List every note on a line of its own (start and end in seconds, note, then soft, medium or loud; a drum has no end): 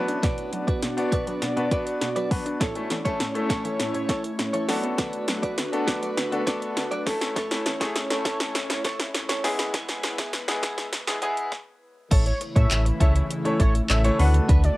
0.00 0.77 B3 loud
0.00 2.58 B3 medium
0.00 0.77 D4 medium
0.00 2.58 D4 medium
0.00 0.77 F#4 medium
0.00 2.58 F#4 medium
0.00 0.77 B4 loud
0.00 2.58 D5 medium
0.08 0.19 D4 medium
0.08 muted clean electric guitar stroke soft
0.08 closed hi-hat medium
0.23 0.34 B2 medium
0.23 0.50 F#4 medium
0.23 0.51 B4 medium
0.23 0.51 D5 medium
0.23 kick loud
0.23 snare medium
0.23 closed hi-hat medium
0.38 closed hi-hat soft
0.53 0.63 F#3 medium
0.53 muted clean electric guitar stroke soft
0.53 closed hi-hat medium
0.67 0.81 F#4 medium
0.67 0.82 B4 medium
0.67 0.82 D5 medium
0.67 kick medium
0.67 closed hi-hat medium
0.82 0.93 B2 medium
0.82 muted clean electric guitar stroke soft
0.82 snare medium
0.82 closed hi-hat medium
0.97 1.31 B3 loud
0.97 1.31 D4 medium
0.97 1.32 F#4 medium
0.97 1.32 D5 loud
0.97 muted clean electric guitar stroke medium
0.97 closed hi-hat medium
1.12 1.27 F#4 medium
1.12 1.26 B4 medium
1.12 1.26 D5 loud
1.12 kick medium
1.12 closed hi-hat medium
1.27 1.38 F#3 medium
1.27 1.44 F#4 soft
1.27 1.44 B4 medium
1.27 1.44 D5 medium
1.27 closed hi-hat medium
1.42 1.52 B2 medium
1.42 snare medium
1.42 closed hi-hat medium
1.57 1.67 B2 medium
1.57 1.65 B3 medium
1.57 1.65 D4 medium
1.57 1.65 F#4 medium
1.57 1.65 B4 medium
1.57 muted clean electric guitar stroke soft
1.57 closed hi-hat soft
1.71 2.06 B3 loud
1.71 2.06 D4 medium
1.71 1.93 F#4 medium
1.71 2.06 F#4 medium
1.71 2.06 B4 loud
1.71 1.86 B4 medium
1.71 1.85 D5 medium
1.71 kick medium
1.71 closed hi-hat medium
1.86 muted clean electric guitar stroke soft
1.86 closed hi-hat medium
2.01 2.12 B2 medium
2.01 muted clean electric guitar stroke soft
2.01 snare medium
2.01 closed hi-hat medium
2.16 2.27 F#3 medium
2.16 2.30 F#4 medium
2.16 2.30 B4 medium
2.16 2.31 D5 medium
2.16 closed hi-hat medium
2.31 2.41 F#3 medium
2.31 2.56 B3 medium
2.31 2.57 D4 medium
2.31 2.57 F#4 medium
2.31 2.57 B4 loud
2.31 muted clean electric guitar stroke soft
2.31 kick loud
2.31 open hi-hat medium
2.46 2.56 D4 medium
2.46 muted clean electric guitar stroke soft
2.46 closed hi-hat medium
2.60 2.71 A2 medium
2.60 9.40 A3 medium
2.60 4.67 C#4 medium
2.60 2.88 E4 medium
2.60 4.67 E4 medium
2.60 2.88 A4 medium
2.60 4.67 C#5 medium
2.60 2.89 C#5 medium
2.60 kick loud
2.60 snare medium
2.60 closed hi-hat medium
2.75 2.93 A3 medium
2.75 2.93 C#4 medium
2.75 2.93 E4 medium
2.75 2.93 A4 loud
2.75 closed hi-hat soft
2.90 3.01 E3 medium
2.90 muted clean electric guitar stroke soft
2.90 snare medium
2.90 closed hi-hat medium
3.05 3.22 A3 loud
3.05 3.22 C#4 medium
3.05 3.22 E4 medium
3.05 3.19 E4 medium
3.05 3.22 A4 loud
3.05 3.19 A4 medium
3.05 3.20 C#5 medium
3.05 kick medium
3.05 closed hi-hat medium
3.20 3.31 A2 medium
3.20 muted clean electric guitar stroke medium
3.20 snare medium
3.20 closed hi-hat medium
3.35 4.03 A3 medium
3.35 4.03 C#4 medium
3.35 4.03 E4 medium
3.35 4.03 A4 loud
3.35 muted clean electric guitar stroke soft
3.35 closed hi-hat soft
3.49 3.60 A2 medium
3.49 3.64 E4 medium
3.49 3.64 A4 medium
3.49 3.63 C#5 medium
3.49 kick medium
3.49 snare medium
3.49 closed hi-hat medium
3.64 3.75 E3 medium
3.64 3.82 E4 medium
3.64 3.81 A4 medium
3.64 3.81 C#5 medium
3.64 closed hi-hat medium
3.80 3.90 A2 medium
3.80 snare medium
3.80 closed hi-hat loud
3.94 4.05 A2 medium
3.94 muted clean electric guitar stroke soft
3.94 closed hi-hat soft
4.09 4.30 E4 medium
4.09 4.24 A4 medium
4.09 4.23 C#5 loud
4.09 kick medium
4.09 snare medium
4.09 closed hi-hat medium
4.24 muted clean electric guitar stroke medium
4.24 closed hi-hat medium
4.39 4.49 A2 medium
4.39 muted clean electric guitar stroke soft
4.39 snare medium
4.39 closed hi-hat medium
4.53 4.64 E3 medium
4.53 4.68 E4 medium
4.53 4.68 A4 medium
4.53 4.69 C#5 medium
4.53 closed hi-hat medium
4.68 4.79 F#3 medium
4.68 5.52 B3 loud
4.68 7.04 D4 medium
4.68 5.52 D4 medium
4.68 4.85 F#4 medium
4.68 7.04 F#4 medium
4.68 5.52 F#4 medium
4.68 5.52 A4 loud
4.68 7.04 B4 medium
4.68 4.83 B4 medium
4.68 4.82 D5 medium
4.68 snare loud
4.68 open hi-hat medium
4.83 4.94 B3 medium
4.83 muted clean electric guitar stroke soft
4.83 closed hi-hat medium
4.98 5.09 D3 medium
4.98 5.26 F#4 medium
4.98 5.26 B4 medium
4.98 5.26 D5 medium
4.98 kick loud
4.98 snare medium
4.98 closed hi-hat loud
5.13 closed hi-hat medium
5.28 5.39 F#3 medium
5.28 muted clean electric guitar stroke soft
5.28 snare loud
5.28 closed hi-hat medium
5.42 5.56 F#4 medium
5.42 5.57 B4 medium
5.42 5.57 D5 medium
5.42 kick medium
5.42 closed hi-hat medium
5.57 5.68 D3 medium
5.57 muted clean electric guitar stroke soft
5.57 snare loud
5.57 closed hi-hat medium
5.72 6.07 B3 loud
5.72 6.07 D4 medium
5.72 6.07 F#4 medium
5.72 6.07 A4 loud
5.72 muted clean electric guitar stroke soft
5.72 closed hi-hat soft
5.87 5.98 D3 medium
5.87 6.02 F#4 medium
5.87 6.02 B4 medium
5.87 6.01 D5 medium
5.87 kick medium
5.87 snare loud
5.87 closed hi-hat medium
6.02 6.13 F#3 medium
6.02 6.19 F#4 medium
6.02 6.19 B4 medium
6.02 6.19 D5 medium
6.02 closed hi-hat medium
6.17 6.28 D3 medium
6.17 snare medium
6.17 closed hi-hat loud
6.32 6.43 D3 medium
6.32 6.40 B3 medium
6.32 6.41 D4 medium
6.32 6.41 F#4 medium
6.32 6.41 A4 loud
6.32 muted clean electric guitar stroke soft
6.32 closed hi-hat soft
6.47 6.81 B3 loud
6.47 6.81 D4 medium
6.47 6.68 F#4 medium
6.47 6.81 F#4 loud
6.47 6.81 A4 loud
6.47 6.61 B4 medium
6.47 6.60 D5 medium
6.47 kick medium
6.47 snare medium
6.47 closed hi-hat medium
6.62 muted clean electric guitar stroke soft
6.62 closed hi-hat medium
6.76 6.87 D3 medium
6.76 muted clean electric guitar stroke soft
6.76 snare loud
6.76 closed hi-hat medium
6.91 7.02 F#3 medium
6.91 7.06 F#4 medium
6.91 7.06 B4 medium
6.91 7.07 D5 medium
6.91 closed hi-hat medium
7.06 7.17 E3 medium
7.06 7.42 A3 loud
7.06 7.42 C#4 medium
7.06 9.42 C#4 medium
7.06 7.23 E4 medium
7.06 9.42 E4 medium
7.06 7.42 E4 medium
7.06 7.42 A4 loud
7.06 7.21 A4 medium
7.06 9.42 C#5 medium
7.06 7.20 C#5 medium
7.06 kick loud
7.06 snare loud
7.06 open hi-hat medium
7.21 7.32 C#4 medium
7.21 muted clean electric guitar stroke soft
7.21 snare loud
7.21 closed hi-hat medium
7.36 7.46 A2 medium
7.36 7.63 E4 medium
7.36 7.64 A4 medium
7.36 7.64 C#5 medium
7.36 kick loud
7.36 snare loud
7.36 closed hi-hat loud
7.51 7.68 A3 medium
7.51 7.68 C#4 medium
7.51 7.68 E4 medium
7.51 7.68 A4 loud
7.51 snare loud
7.51 closed hi-hat soft
7.66 7.76 E3 medium
7.66 muted clean electric guitar stroke soft
7.66 snare loud
7.66 closed hi-hat medium
7.80 7.98 A3 loud
7.80 7.98 C#4 loud
7.80 7.98 E4 medium
7.80 7.94 E4 medium
7.80 7.98 G#4 loud
7.80 7.95 A4 medium
7.80 7.95 C#5 medium
7.80 kick loud
7.80 snare loud
7.80 closed hi-hat medium
7.95 8.06 A2 medium
7.95 muted clean electric guitar stroke soft
7.95 snare loud
7.95 closed hi-hat medium
8.10 8.78 A3 medium
8.10 8.78 C#4 medium
8.10 8.78 E4 medium
8.10 8.79 A4 loud
8.10 muted clean electric guitar stroke medium
8.10 snare loud
8.10 closed hi-hat medium
8.25 8.40 E4 medium
8.25 8.39 A4 loud
8.25 8.39 C#5 loud
8.25 kick medium
8.25 snare loud
8.25 closed hi-hat medium
8.40 8.50 E3 medium
8.40 8.57 E4 medium
8.40 8.57 A4 medium
8.40 8.57 C#5 medium
8.40 snare loud
8.40 closed hi-hat medium
8.55 8.65 A2 medium
8.55 snare loud
8.55 closed hi-hat loud
8.70 8.80 A2 medium
8.70 muted clean electric guitar stroke medium
8.70 snare loud
8.70 closed hi-hat soft
8.84 9.06 E4 medium
8.84 8.99 A4 medium
8.84 8.98 C#5 loud
8.84 kick medium
8.84 snare loud
8.84 closed hi-hat medium
8.99 muted clean electric guitar stroke medium
8.99 snare loud
8.99 closed hi-hat medium
9.14 9.25 A2 medium
9.14 muted clean electric guitar stroke medium
9.14 snare loud
9.14 closed hi-hat medium
9.29 9.40 E3 medium
9.29 9.43 E4 medium
9.29 9.45 A4 medium
9.29 9.50 C#5 medium
9.29 snare loud
9.29 closed hi-hat medium
9.44 10.27 G#3 loud
9.44 11.50 G#3 medium
9.44 9.54 G#3 medium
9.44 9.60 B3 medium
9.44 11.50 B3 medium
9.44 10.27 B3 loud
9.44 11.50 E4 medium
9.44 10.27 E4 medium
9.44 9.59 E4 medium
9.44 10.27 G#4 loud
9.44 9.58 G#4 medium
9.44 11.50 B4 medium
9.44 snare loud
9.44 open hi-hat medium
9.59 9.69 E4 medium
9.59 muted clean electric guitar stroke soft
9.59 snare loud
9.59 closed hi-hat medium
9.74 9.84 E3 medium
9.74 10.01 B3 medium
9.74 10.01 E4 loud
9.74 10.02 G#4 loud
9.74 kick loud
9.74 snare loud
9.74 closed hi-hat loud
9.88 snare loud
9.88 closed hi-hat soft
10.03 10.14 G#3 medium
10.03 muted clean electric guitar stroke soft
10.03 snare loud
10.03 closed hi-hat medium
10.18 10.32 B3 medium
10.18 10.32 E4 medium
10.18 10.33 G#4 medium
10.18 kick loud
10.18 snare loud
10.18 closed hi-hat medium
10.33 10.44 E3 medium
10.33 snare loud
10.33 closed hi-hat medium
10.48 10.82 G#3 loud
10.48 10.82 B3 medium
10.48 10.82 E4 medium
10.48 10.82 G#4 loud
10.48 muted clean electric guitar stroke soft
10.48 snare loud
10.48 closed hi-hat medium
10.62 10.73 E3 medium
10.62 10.77 B3 medium
10.62 10.77 E4 medium
10.62 10.76 G#4 medium
10.62 kick medium
10.62 snare loud
10.62 closed hi-hat medium
10.77 10.88 G#3 medium
10.77 10.95 B3 medium
10.77 10.94 E4 medium
10.77 10.94 G#4 medium
10.77 snare loud
10.77 closed hi-hat medium
10.93 11.03 E3 medium
10.93 snare loud
10.93 closed hi-hat loud
11.07 11.18 E3 medium
11.07 11.16 G#3 medium
11.07 11.16 B3 medium
11.07 11.16 E4 medium
11.07 11.16 G#4 loud
11.07 muted clean electric guitar stroke soft
11.07 snare loud
11.07 closed hi-hat soft
11.22 11.52 G#3 loud
11.22 11.43 B3 medium
11.22 11.52 B3 loud
11.22 11.52 E4 medium
11.22 11.37 E4 loud
11.22 11.52 G#4 loud
11.22 11.36 G#4 medium
11.22 closed hi-hat medium
11.37 muted clean electric guitar stroke soft
11.37 closed hi-hat medium
11.52 kick loud
11.52 snare medium
12.11 12.32 A1 loud
12.11 14.17 C#3 medium
12.11 14.17 E3 medium
12.11 14.77 A3 medium
12.11 12.32 E4 medium
12.11 14.17 E4 loud
12.11 12.26 A4 medium
12.11 12.25 C#5 medium
12.11 kick loud
12.11 closed hi-hat loud
12.11 crash loud
12.26 12.39 C#5 medium
12.26 muted clean electric guitar stroke soft
12.26 closed hi-hat medium
12.41 muted clean electric guitar stroke soft
12.41 closed hi-hat medium
12.56 12.66 A2 loud
12.56 12.81 A3 medium
12.56 12.81 C#4 medium
12.56 12.81 E4 medium
12.56 12.69 E4 medium
12.56 12.82 A4 medium
12.56 12.70 A4 medium
12.56 12.70 C#5 medium
12.56 12.82 C#5 medium
12.56 12.81 E5 medium
12.56 kick loud
12.56 closed hi-hat medium
12.71 12.92 A1 loud
12.71 muted clean electric guitar stroke medium
12.71 clap loud
12.71 closed hi-hat loud
12.86 muted clean electric guitar stroke soft
12.86 closed hi-hat medium
13.00 13.21 C#2 loud
13.00 13.26 A3 medium
13.00 13.26 C#4 medium
13.00 13.22 E4 medium
13.00 13.26 E4 medium
13.00 13.26 A4 medium
13.00 13.15 A4 medium
13.00 13.26 C#5 medium
13.00 13.14 C#5 loud
13.00 13.13 E5 medium
13.00 kick medium
13.00 closed hi-hat medium
13.15 muted clean electric guitar stroke medium
13.15 closed hi-hat medium
13.30 muted clean electric guitar stroke soft
13.30 closed hi-hat medium
13.45 13.70 A3 medium
13.45 13.70 C#4 medium
13.45 13.71 E4 medium
13.45 13.71 A4 medium
13.45 13.71 C#5 medium
13.45 muted clean electric guitar stroke soft
13.45 closed hi-hat soft
13.60 13.81 A1 medium
13.60 13.81 E4 medium
13.60 13.75 A4 medium
13.60 13.72 C#5 medium
13.60 13.74 C#5 medium
13.60 kick medium
13.60 closed hi-hat medium
13.75 muted clean electric guitar stroke soft
13.75 closed hi-hat medium
13.89 14.10 A1 loud
13.89 13.98 A3 medium
13.89 13.98 C#4 medium
13.89 13.98 E4 medium
13.89 13.98 A4 medium
13.89 13.98 C#5 medium
13.89 14.02 E5 medium
13.89 muted clean electric guitar stroke soft
13.89 clap loud
13.89 closed hi-hat medium
14.04 14.19 A3 medium
14.04 14.19 C#4 medium
14.04 14.19 E4 medium
14.04 14.18 A4 medium
14.04 14.19 A4 medium
14.04 14.20 C#5 medium
14.04 14.19 C#5 loud
14.04 closed hi-hat medium
14.19 14.40 D2 loud
14.19 14.77 D3 medium
14.19 14.77 B3 medium
14.19 14.77 D4 medium
14.19 14.77 F#4 medium
14.19 14.77 F#4 loud
14.19 14.77 A4 medium
14.19 14.77 B4 loud
14.19 14.32 F#5 medium
14.19 muted clean electric guitar stroke soft
14.19 open hi-hat medium
14.34 muted clean electric guitar stroke medium
14.34 closed hi-hat medium
14.49 14.70 D2 loud
14.49 14.70 D4 medium
14.49 14.63 F#4 medium
14.49 14.63 B4 loud
14.49 kick loud
14.49 closed hi-hat loud
14.64 14.77 D5 medium
14.64 muted clean electric guitar stroke soft
14.64 closed hi-hat medium